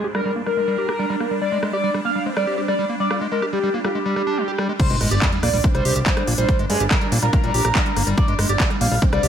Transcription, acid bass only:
0.04 0.08 G4 medium
0.15 0.21 G3 medium
0.25 0.32 G3 loud
0.36 0.42 A#3 medium
0.46 0.50 G3 medium
0.57 0.61 G#3 medium
0.68 0.77 G3 loud
0.78 0.88 G4 medium
0.89 0.92 G4 medium
0.99 1.06 G3 loud
1.10 1.16 G3 loud
1.20 1.27 A#3 medium
1.31 1.40 G3 medium
1.42 1.51 G3 medium
1.52 1.58 G#3 loud
1.63 1.72 G#3 loud
1.73 1.77 G4 medium
1.84 1.90 G3 loud
1.94 2.01 G3 loud
2.05 2.11 A#3 medium
2.15 2.19 G3 medium
2.26 2.30 G#3 medium
2.37 2.46 G3 loud
2.47 2.57 G4 medium
2.58 2.61 G4 medium
2.68 2.75 G3 loud
2.79 2.85 G3 loud
2.89 2.96 A#3 medium
3.00 3.09 G3 medium
3.11 3.20 G3 medium
3.21 3.27 G#3 loud
3.32 3.41 G#3 loud
3.42 3.46 G4 medium
3.53 3.59 G3 loud
3.63 3.70 G3 loud
3.74 3.80 A#3 medium
3.84 3.88 G3 medium
3.95 3.99 G#3 medium
4.06 4.15 G3 loud
4.16 4.22 G3 loud
4.27 4.39 D4 loud
4.37 4.44 G3 medium
4.48 4.52 G4 medium
4.58 4.68 G3 loud
4.69 4.73 G#3 medium
4.80 4.89 G3 medium
4.90 4.96 G#3 loud
5.01 5.10 G#3 loud
5.11 5.15 G4 medium
5.22 5.28 G3 loud
5.32 5.39 G3 loud
5.43 5.49 A#3 medium
5.54 5.57 G3 medium
5.64 5.68 G#3 medium
5.75 5.84 G3 loud
5.85 5.95 G4 medium
5.96 6.00 G4 medium
6.06 6.13 G3 loud
6.17 6.23 G3 loud
6.27 6.34 A#3 medium
6.38 6.47 G3 medium
6.59 6.65 G#3 loud
6.70 6.79 G#3 loud
6.80 6.84 G4 medium
6.91 6.97 G3 loud
7.01 7.08 G3 loud
7.12 7.18 A#3 medium
7.22 7.26 G3 medium
7.33 7.37 G#3 medium
7.44 7.53 G3 loud
7.54 7.64 G4 medium
7.65 7.68 G4 medium
7.75 7.82 G3 loud
7.86 7.92 G3 loud
7.96 8.03 A#3 medium
8.07 8.16 G3 medium
8.28 8.34 G#3 loud
8.39 8.48 G#3 loud
8.49 8.53 G4 medium
8.60 8.66 G3 loud
8.70 8.77 G3 loud
8.81 8.87 A#3 medium
8.92 8.95 G3 medium
9.02 9.06 G#3 medium
9.13 9.22 G3 loud
9.23 9.28 G4 medium

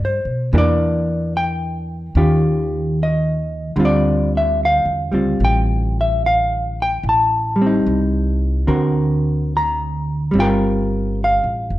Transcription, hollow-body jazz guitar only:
0.00 0.52 F3 soft
0.00 0.53 A3 soft
0.00 0.54 G4 soft
0.05 0.52 C5 medium
0.53 2.15 E3 soft
0.53 2.16 A#3 soft
0.53 2.16 D4 soft
0.53 0.57 G4 soft
0.58 1.32 D5 medium
1.37 2.17 G5 medium
2.17 3.75 D#3 soft
2.17 3.78 C#4 soft
2.17 3.78 F4 soft
2.17 3.03 G4 soft
3.03 3.83 D#5 medium
3.76 7.03 D3 soft
3.76 5.10 G3 soft
3.76 5.12 C4 soft
3.76 5.13 F4 soft
3.85 4.32 D5 medium
4.37 4.60 E5 medium
4.65 5.44 F5 medium
5.12 7.03 G3 soft
5.12 7.04 C4 soft
5.12 7.04 F4 soft
5.45 5.98 G5 medium
6.01 6.25 E5 medium
6.26 6.75 F5 medium
6.82 7.07 G5 medium
7.09 8.68 A5 medium
7.56 8.66 G3 soft
7.62 8.66 C4 medium
7.66 8.68 D#4 soft
8.67 10.32 D3 soft
8.67 10.32 C4 soft
8.67 10.33 F#4 soft
8.67 9.56 A#4 soft
9.57 10.38 A#5 medium
10.31 11.79 G3 soft
10.31 11.79 C4 soft
10.39 11.79 F4 soft
10.39 11.24 A#4 medium
10.39 11.14 G5 medium
11.24 11.79 F5 medium

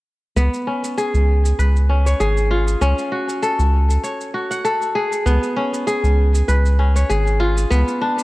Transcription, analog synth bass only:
0.36 0.49 C#2 medium
1.14 1.53 C#2 medium
1.59 2.14 C#2 medium
2.20 2.75 G#1 medium
2.81 2.94 C#2 medium
3.59 3.98 C#2 medium
5.26 5.39 C#2 loud
6.04 6.43 C#2 medium
6.49 7.04 C#2 medium
7.10 7.65 G#1 medium
7.71 7.83 C#2 loud

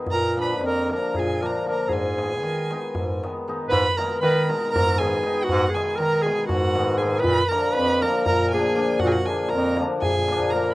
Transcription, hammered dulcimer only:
0.00 0.13 D#3 medium
0.00 0.13 G#3 medium
0.36 0.89 D3 medium
0.36 0.89 F3 medium
0.36 0.53 A#3 medium
0.36 0.54 D4 medium
0.90 1.40 D3 soft
0.90 1.41 F3 medium
0.90 1.07 A#3 medium
0.90 1.07 D4 medium
1.41 1.65 D3 medium
1.41 1.66 F3 medium
1.41 1.58 A#3 soft
1.41 1.58 D4 medium
1.66 1.94 D3 medium
1.66 1.94 F3 medium
1.66 1.82 A#3 medium
1.66 1.83 D4 medium
2.17 2.70 D#3 soft
2.17 2.70 G#3 medium
2.17 2.34 B3 soft
2.17 2.35 D#4 medium
2.71 3.22 D#3 medium
2.71 3.22 G#3 medium
2.71 2.87 B3 medium
2.71 2.88 D#4 medium
3.23 3.46 D#3 medium
3.23 3.46 G#3 medium
3.23 3.39 B3 medium
3.23 3.39 D#4 medium
3.47 3.74 D#3 medium
3.47 3.74 G#3 medium
3.47 3.63 B3 medium
3.47 3.63 D#4 medium
3.98 4.48 B2 medium
3.98 4.48 D#3 soft
3.98 4.49 G#3 medium
3.98 4.15 B3 soft
3.98 4.15 D#4 medium
4.49 4.98 B2 medium
4.49 4.99 D#3 medium
4.49 4.99 G#3 medium
4.49 4.66 B3 medium
4.49 4.66 D#4 medium
4.99 5.22 B2 medium
4.99 5.23 D#3 medium
4.99 5.24 G#3 medium
4.99 5.16 B3 medium
4.99 5.16 D#4 medium
5.23 5.73 B2 medium
5.23 5.73 D#3 medium
5.23 5.75 G#3 medium
5.23 5.40 B3 medium
5.23 5.41 D#4 medium
5.74 6.24 B2 medium
5.74 6.26 D#3 medium
5.74 6.26 G#3 medium
5.74 5.91 B3 medium
5.74 5.92 D#4 medium
6.26 6.75 B2 medium
6.26 6.75 D#3 medium
6.26 6.76 G#3 medium
6.26 6.43 B3 medium
6.26 6.44 D#4 medium
6.77 6.99 B2 medium
6.77 6.99 D#3 medium
6.77 7.00 G#3 medium
6.77 6.93 B3 medium
6.77 6.93 D#4 medium
7.00 7.29 B2 medium
7.00 7.29 D#3 medium
7.00 7.29 G#3 medium
7.00 7.17 B3 medium
7.00 7.17 D#4 medium
7.51 8.01 A#2 medium
7.51 8.01 D3 medium
7.51 8.01 F3 medium
7.51 7.68 A#3 medium
7.51 7.68 D4 medium
8.02 8.52 A#2 medium
8.02 8.52 D3 medium
8.02 8.53 F3 medium
8.02 8.19 A#3 medium
8.02 8.20 D4 medium
8.53 8.74 A#2 medium
8.53 8.74 D3 medium
8.53 8.74 F3 medium
8.53 8.69 A#3 medium
8.53 8.69 D4 medium
8.75 9.26 A#2 medium
8.75 9.27 D3 medium
8.75 9.27 F3 medium
8.75 8.92 A#3 medium
8.75 8.92 D4 medium
9.27 9.78 A#2 medium
9.27 9.79 D3 medium
9.27 9.79 F3 medium
9.27 9.44 A#3 medium
9.27 9.44 D4 medium
9.79 10.29 A#2 medium
9.79 10.30 D3 medium
9.79 10.30 F3 medium
9.79 9.95 A#3 medium
9.79 9.96 D4 medium
10.30 10.52 A#2 medium
10.30 10.53 D3 medium
10.30 10.54 F3 medium
10.30 10.46 A#3 medium
10.30 10.46 D4 medium
10.53 10.74 A#2 medium
10.53 10.74 D3 medium
10.53 10.74 F3 medium
10.53 10.69 A#3 medium
10.53 10.69 D4 medium

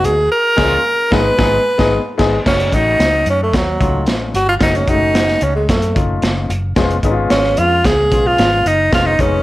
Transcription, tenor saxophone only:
0.05 0.31 G#4 medium
0.31 1.14 A#4 loud
1.13 2.20 B4 loud
2.47 2.76 C#4 medium
2.75 3.28 D#4 loud
3.30 3.41 C#4 medium
3.43 3.58 A3 medium
3.56 4.09 F#3 medium
4.35 4.47 F#4 medium
4.49 4.55 F4 medium
4.62 4.78 D#4 medium
4.77 4.91 C#4 medium
4.90 5.45 D#4 loud
5.43 5.55 C#4 medium
5.55 5.68 G#3 medium
5.69 5.94 A3 medium
7.31 7.60 C#4 loud
7.59 7.87 F4 loud
7.85 8.28 G#4 loud
8.27 8.68 F4 loud
8.67 8.93 D#4 medium
8.94 9.07 F4 loud
9.06 9.22 D#4 medium
9.21 9.43 C#4 medium

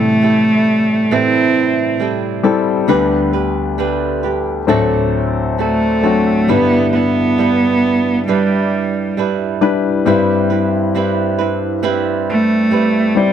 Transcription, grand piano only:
0.00 2.85 A2 soft
0.00 1.02 C3 soft
0.00 2.85 E3 soft
0.00 1.02 G3 medium
0.00 1.03 E4 soft
0.00 1.03 A4 medium
2.43 2.86 G3 medium
2.43 2.86 C4 medium
2.43 2.87 E4 medium
2.43 2.87 A4 medium
2.87 4.64 D2 medium
2.87 4.64 D3 medium
2.87 4.58 G3 medium
2.87 4.59 B3 medium
2.87 4.59 D4 medium
2.87 4.60 B4 medium
4.67 6.44 D2 medium
4.67 6.44 A2 medium
4.67 5.96 F#3 medium
4.67 5.96 C4 medium
4.67 5.97 D4 medium
4.67 5.97 A4 medium
6.03 6.46 F#3 soft
6.03 6.46 C4 soft
6.03 6.46 D4 soft
6.03 6.47 F#4 medium
6.48 10.03 G2 soft
6.48 10.03 D3 soft
6.48 8.19 G3 soft
6.48 8.19 D4 soft
6.48 8.19 E4 soft
6.48 8.20 B4 soft
9.61 10.04 G3 medium
9.61 10.04 D4 medium
9.61 10.04 E4 medium
9.61 10.05 B4 medium
10.05 13.33 G2 medium
10.05 11.74 G3 medium
10.05 11.74 C4 medium
10.05 11.75 E4 medium
10.05 11.75 B4 medium
13.15 13.33 G3 medium
13.15 13.33 C4 soft
13.15 13.33 E4 medium
13.15 13.33 D5 medium

